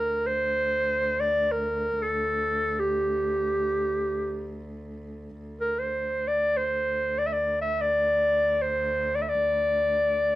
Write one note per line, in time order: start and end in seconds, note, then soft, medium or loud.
0.00 5.38 D2 medium
0.00 0.29 A#4 medium
0.27 1.22 C5 medium
1.20 1.53 D5 medium
1.52 2.04 A#4 medium
2.03 2.81 A4 medium
2.80 4.61 G4 medium
5.39 10.35 D2 medium
5.61 5.81 A#4 medium
5.79 6.29 C5 medium
6.28 6.59 D5 medium
6.57 7.20 C5 medium
7.19 7.28 D5 medium
7.27 7.34 E5 medium
7.33 7.61 D5 medium
7.62 7.83 E5 medium
7.81 8.63 D5 medium
8.62 9.17 C5 medium
9.16 9.24 D5 medium
9.22 9.31 E5 medium
9.29 10.35 D5 medium